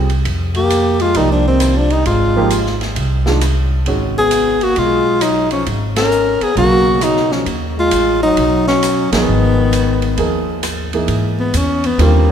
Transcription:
Already playing: C2
0.10 ride
0.25 F2, ride
0.55 A#3 G4, ride
0.70 hi-hat pedal, ride
1.00 G#3 F4, ride
1.15 C2 F3 G3 A#3 D#4 G4, ride
1.31 F3 D4
1.47 D#3 C4
1.60 cross-stick, hi-hat pedal, ride
1.77 F3 D4
1.90 G3 D#4, ride
2.05 G#1 G#3 F4, ride
2.36 F3 A#3 D#4 G4
2.50 hi-hat pedal, ride
2.66 snare
2.81 snare, ride
2.95 C2, ride
3.26 D#3 G#3 D4 F4, snare
3.41 cross-stick, hi-hat pedal, ride
3.86 G#1 D#3 G#3 C#4 F#4, ride
4.17 B3 G#4
4.31 hi-hat pedal, ride
4.61 A#3 F#4, ride
4.76 B1 G#3 F4, ride
5.21 F#3 D#4, cross-stick, hi-hat pedal, ride
5.51 F3 C#4, ride
5.66 G#1, ride
5.96 C#4 A#4, snare, ride
6.12 hi-hat pedal
6.41 B3 G#4, muted upright bass stroke, ride
6.56 B1 B2 C#3 F#3 A#3 F#4 F5, ride
7.01 F#3 D#4, cross-stick, hi-hat pedal, ride
7.16 snare
7.31 F3 C#4, snare
7.46 D#2, ride
7.78 G#3 F4
7.91 A1, hi-hat pedal, ride
8.23 F#3 D#4
8.37 B1, ride
8.67 F#3 C#4, snare
8.83 cross-stick, hi-hat pedal, ride
9.12 A#1 D#3 F3 B3 D#4 G#4 A#4, snare, ride
9.27 G#1
9.73 hi-hat pedal, ride
10.02 ride
10.17 D#2 F3 D#4 G#4 A#4, ride
10.63 cross-stick, hi-hat pedal, ride
10.93 E3 A#3 D#4 G#4, ride
11.08 G#2, ride
11.40 B3
11.54 E2 C#4, hi-hat pedal, ride
11.84 B3, ride
11.98 D#2 D3 G3 C4 F4, ride
12.02 A#3

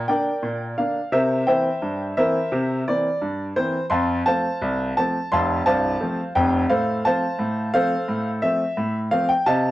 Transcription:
0.08 D3 A#3 D4 A#4 D5 G5
0.43 A#2
0.78 D3 A#3 D4 F5
1.12 C3 A#4 C5 E5
1.47 E3 A#3 C4 C5 E5 G5
1.82 G2
2.17 E3 A#3 C4 A#4 C5 E5
2.52 C3
2.88 E3 A#3 C4 D5
3.21 G2
3.56 E3 A#3 C4 C5
3.90 F2 F5 A5 C6
4.26 F3 A3 C4 C5 F5 A5
4.62 C2
4.97 F3 A3 C4 A5
5.32 F1 F2 F5 A5 C6
5.66 C1 C2 C5 F5 A5
6.01 F3 A3 C4
6.35 F1 F2 G5
6.69 A2 A4 C5 F5
7.05 F3 A3 C4 C5 F5 A5
7.39 A2
7.74 F3 A3 C4 A4 C5 F5
8.08 A2
8.42 F3 A3 C4 E5
8.77 A2
9.11 F3 A3 C4 F5
9.29 G5
9.46 C3 D#5 F5 A5

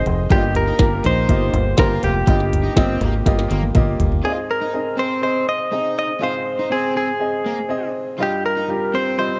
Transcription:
Already playing: G#2 C4 D#4 G#4 C5 D#5 F5
0.06 F1, closed hi-hat, floor tom
0.30 G1 G2 A#3 F4 G4 D5, kick, closed hi-hat
0.38 D#5
0.55 A#4, closed hi-hat, floor tom
0.67 D#4
0.79 G1 A#3 F4 G4 A#4, kick, snare, closed hi-hat
1.04 A#1 D#4 C5, closed hi-hat, floor tom
1.29 G1 A#3 F4 G4 D#5, kick, closed hi-hat
1.53 G1, closed hi-hat, floor tom
1.77 G1 A#3 F4 G4 A#4 C5, kick, snare, closed hi-hat
2.03 F1 G4, closed hi-hat, floor tom
2.27 G1 G2 A#3 F4 G4 D#5, kick, closed hi-hat
2.40 snare
2.53 closed hi-hat, floor tom
2.64 D#4
2.76 G1 A#3 C4 F4 G4 D#5, kick, snare, closed hi-hat
3.01 G#1 A#3, closed hi-hat, floor tom
3.26 G1 A#3 F4 G4 D#5, kick, snare, closed hi-hat
3.39 snare
3.50 G1 A#3, closed hi-hat
3.63 high tom
3.75 G1 A#3 F4 G4 D#5, kick, closed hi-hat, mid tom
3.99 G1, closed hi-hat, floor tom
4.12 floor tom
4.24 G#2 C4 F4 G#4 D5
4.32 D#5
4.51 A#4
4.61 D#4
4.73 C4 G#4 D#5
4.97 C4 C5
5.22 C4 G#4 C5 D#5
5.49 D#5
5.71 C4 D#4 G#4 D#5
5.99 D#5
6.20 G#2 C4 F4 G#4 C5 F5
6.59 D#4
6.70 C4 G#4 C5
6.96 C4 G#4
7.20 C4 G#4 D#5
7.46 A#3
7.69 C4 G#4 D#5
8.19 G2 G3 F4 D#5
8.23 G4
8.46 A#4
8.57 D#4
8.68 G3 F4 G4
8.94 C4 C5
9.17 G3 F4 C5 D#5

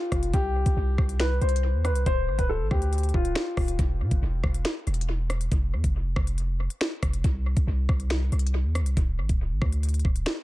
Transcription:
Already playing: F4
0.12 F1, kick, cross-stick, closed hi-hat
0.23 closed hi-hat
0.33 C2 G4, kick, closed hi-hat
0.66 C2, kick, closed hi-hat
0.77 C2
0.98 C2, kick, cross-stick
1.09 closed hi-hat
1.20 B4, finger snap, snare
1.41 C2 C5, closed hi-hat
1.49 closed hi-hat
1.56 closed hi-hat
1.74 E2
1.85 B4, cross-stick, closed hi-hat
1.90 C2
1.96 closed hi-hat
2.06 D1 C5, kick, closed hi-hat
2.28 A1
2.38 D1 B4, kick, closed hi-hat
2.49 A4
2.60 A1
2.71 D2 G4, kick, cross-stick
2.82 closed hi-hat
2.93 closed hi-hat
2.98 closed hi-hat
3.03 closed hi-hat
3.09 closed hi-hat
3.14 D1 F4, kick
3.25 closed hi-hat
3.35 finger snap, snare
3.57 D1, kick, cross-stick, open hi-hat
3.68 closed hi-hat
3.79 E1, kick, closed hi-hat
4.01 B2
4.11 E1, kick, closed hi-hat
4.22 E1
4.44 E1, kick, cross-stick
4.54 closed hi-hat
4.65 finger snap, snare
4.87 E1, closed hi-hat
4.94 closed hi-hat
5.01 closed hi-hat
5.30 cross-stick, closed hi-hat
5.41 closed hi-hat
5.52 F1, kick, closed hi-hat
5.73 F2
5.84 F1, kick, closed hi-hat
6.16 F1, kick, cross-stick
6.27 closed hi-hat
6.38 closed hi-hat
6.70 closed hi-hat
6.81 finger snap, snare
7.03 F1, kick, cross-stick, closed hi-hat
7.13 closed hi-hat
7.24 C2, kick, closed hi-hat
7.57 C2, kick, closed hi-hat
7.67 C2
7.89 C2, kick, cross-stick
8.00 closed hi-hat
8.10 finger snap, snare
8.32 C2, closed hi-hat
8.39 closed hi-hat
8.47 closed hi-hat
8.64 E2
8.75 cross-stick, closed hi-hat
8.81 C2
8.86 closed hi-hat
8.97 D1, kick, closed hi-hat
9.18 A1
9.29 D1, kick, closed hi-hat
9.51 A1
9.62 D2, kick, cross-stick
9.72 closed hi-hat
9.83 closed hi-hat
9.89 closed hi-hat
9.94 closed hi-hat
9.99 closed hi-hat
10.05 D1, kick
10.16 closed hi-hat
10.26 finger snap, snare

